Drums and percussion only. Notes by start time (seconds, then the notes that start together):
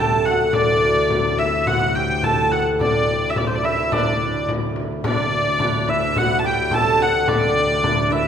0.26 frame drum
0.53 frame drum
1.10 frame drum
1.39 frame drum
1.67 frame drum
2.23 frame drum
2.52 frame drum
2.81 frame drum
3.36 frame drum
3.65 frame drum
3.92 frame drum
4.49 frame drum
4.76 frame drum
5.04 frame drum
5.60 frame drum
5.88 frame drum
6.16 frame drum
6.71 frame drum
7.00 frame drum
7.28 frame drum
7.84 frame drum
8.11 frame drum